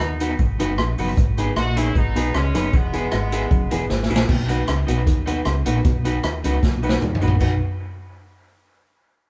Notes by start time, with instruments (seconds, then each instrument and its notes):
Already playing: horn section B3 D#4
0.00 fingered electric bass D#2, clean electric guitar D#3, cabasa
0.20 upright piano B3 D#4 F#4 B4, clean electric guitar D#4 F#4 B4, closed hi-hat, cabasa
0.39 fingered electric bass G#1, clean electric guitar G#2, kick, cabasa
0.59 fingered electric bass F#1, clean electric guitar F#2 D#4 F#4 B4, upright piano B3 D#4 F#4 B4, cross-stick, closed hi-hat, cabasa
0.78 fingered electric bass A#1, clean electric guitar A#2, cross-stick, cabasa
0.98 fingered electric bass F#1, clean electric guitar F#2 D#4 F#4 B4, upright piano B3 D#4 F#4 B4, open hi-hat, cabasa
1.17 fingered electric bass G#1, clean electric guitar G#2, kick, hi-hat pedal, cabasa
1.37 upright piano B3 D#4 G#4 B4, clean electric guitar D#4 G#4 B4, closed hi-hat, cabasa
1.56 fingered electric bass A#1, clean electric guitar A#2, horn section D#4 F#4, cross-stick, cabasa
1.76 upright piano B3 D#4 G#4 B4, horn section C#4 E4, clean electric guitar D#4 G#4 B4, closed hi-hat, cabasa
1.95 fingered electric bass G#1, clean electric guitar G#2, horn section B3 D#4, kick, cabasa
2.15 fingered electric bass B1, clean electric guitar B2 D#4 G#4 B4, upright piano B3 D#4 G#4 B4, closed hi-hat, cabasa
2.34 fingered electric bass C#2, clean electric guitar C#3, horn section G#3 C#4, cross-stick, cabasa
2.54 fingered electric bass F#1, clean electric guitar F#2 D#4 G#4 B4, upright piano B3 D#4 G#4 B4, cross-stick, closed hi-hat, cabasa
2.73 fingered electric bass E1, clean electric guitar E2, horn section G#3 B3, kick, cabasa
2.93 upright piano B3 E4 G#4 B4, clean electric guitar E4 G#4 B4, closed hi-hat, cabasa
3.12 fingered electric bass G#1, clean electric guitar G#2, cross-stick, cabasa
3.32 upright piano B3 E4 G#4 B4, clean electric guitar E4 G#4 B4, closed hi-hat, cabasa
3.51 fingered electric bass F#1, clean electric guitar F#2, kick, cabasa
3.71 fingered electric bass E1, clean electric guitar E2 E4 G#4 B4, upright piano B3 E4 G#4 B4, closed hi-hat, cabasa
3.90 fingered electric bass G#1, clean electric guitar G#2, snare, cabasa
4.03 snare
4.10 fingered electric bass A#1, clean electric guitar A#2 E4 G#4 B4, upright piano B3 E4 G#4 B4, cabasa
4.16 snare
4.29 fingered electric bass B1, clean electric guitar B2, kick, crash, cabasa
4.48 upright piano B3 D#4 F#4 B4, clean electric guitar D#4 F#4 B4, closed hi-hat, cabasa
4.68 fingered electric bass C#2, clean electric guitar C#3, cross-stick, closed hi-hat, cabasa
4.87 fingered electric bass B1, clean electric guitar B2 D#4 F#4 B4, upright piano B3 D#4 F#4 B4, closed hi-hat, cabasa
5.06 fingered electric bass D#2, clean electric guitar D#3, kick, closed hi-hat, cabasa
5.26 upright piano B3 D#4 F#4 B4, clean electric guitar D#4 F#4 B4, closed hi-hat, cabasa
5.45 fingered electric bass C#2, clean electric guitar C#3, cross-stick, closed hi-hat, cabasa
5.65 fingered electric bass A#1, clean electric guitar A#2 D#4 F#4 B4, upright piano B3 D#4 F#4 B4, closed hi-hat, cabasa
5.85 fingered electric bass B1, clean electric guitar B2, kick, closed hi-hat, cabasa
6.04 upright piano B3 D#4 F#4 B4, clean electric guitar D#4 F#4 B4, closed hi-hat, cabasa
6.24 fingered electric bass D#2, clean electric guitar D#3, cross-stick, closed hi-hat, cabasa
6.44 fingered electric bass C#2, clean electric guitar C#3 D#4 F#4 B4, upright piano B3 D#4 F#4 B4, closed hi-hat, cabasa
6.63 fingered electric bass B1, clean electric guitar B2, kick, snare, cabasa
6.83 upright piano B3 D#4 F#4 B4, clean electric guitar D#4 F#4 B4, cabasa
6.89 snare
7.01 fingered electric bass D#2, clean electric guitar D#3, mid tom, cabasa
7.15 floor tom
7.21 fingered electric bass A#1, clean electric guitar A#2 D#4 F#4 B4, upright piano B3 D#4 F#4 B4, cabasa
7.28 floor tom
7.40 fingered electric bass B1, upright piano B3 D#4 F#4 B4, clean electric guitar D#4 F#4 B4, kick, crash, cabasa